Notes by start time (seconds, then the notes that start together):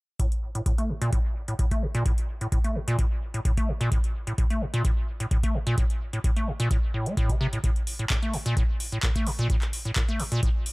0.20 A2, kick, closed hi-hat
0.32 closed hi-hat
0.55 A2, closed hi-hat
0.66 A2, kick, closed hi-hat
0.78 A3, closed hi-hat
0.89 A2
1.01 A#2, closed hi-hat
1.13 A2, kick, closed hi-hat
1.48 A2, closed hi-hat
1.59 A2, kick, closed hi-hat
1.71 A3, kick, closed hi-hat
1.82 A2
1.95 A#2, closed hi-hat
2.06 kick, closed hi-hat
2.18 closed hi-hat
2.41 A2, closed hi-hat
2.52 A2, kick, closed hi-hat
2.64 A3, closed hi-hat
2.75 A2
2.88 A#2, closed hi-hat
2.99 kick, closed hi-hat
3.34 A2, closed hi-hat
3.45 A2, kick, closed hi-hat
3.57 A3, kick, closed hi-hat
3.68 A2
3.81 A#2, closed hi-hat
3.92 kick, closed hi-hat
4.04 closed hi-hat
4.27 A2, closed hi-hat
4.38 A2, kick, closed hi-hat
4.50 A3, closed hi-hat
4.61 A2
4.74 A#2, closed hi-hat
4.85 kick, closed hi-hat
5.20 A2, closed hi-hat
5.31 A2, kick, closed hi-hat
5.43 A3, kick, closed hi-hat
5.54 A2
5.67 A#2, closed hi-hat
5.78 kick, closed hi-hat
5.90 closed hi-hat
6.13 A2, closed hi-hat
6.24 A2, kick, closed hi-hat
6.36 A3, closed hi-hat
6.47 A2
6.60 A#2, closed hi-hat
6.71 kick, closed hi-hat
6.94 A2
7.06 A3, closed hi-hat
7.17 A2, kick, closed hi-hat
7.30 C3, kick, closed hi-hat
7.41 C3
7.53 A2, closed hi-hat
7.64 A2, kick, closed hi-hat
7.76 closed hi-hat
7.87 open hi-hat
7.99 A2, closed hi-hat
8.10 A2, kick, clap, closed hi-hat
8.22 A3, closed hi-hat
8.34 A2, open hi-hat
8.46 A#2, closed hi-hat
8.57 A2, kick, closed hi-hat
8.80 open hi-hat
8.92 A2, closed hi-hat
9.03 A2, kick, clap, closed hi-hat
9.16 A3, kick, closed hi-hat
9.27 A2, open hi-hat
9.39 A#2, closed hi-hat
9.50 A2, kick, closed hi-hat
9.62 clap, closed hi-hat
9.73 open hi-hat
9.85 A2, closed hi-hat
9.96 A2, kick, clap, closed hi-hat
10.09 A3, closed hi-hat
10.20 A2, open hi-hat
10.32 A#2, closed hi-hat
10.43 kick, closed hi-hat
10.66 open hi-hat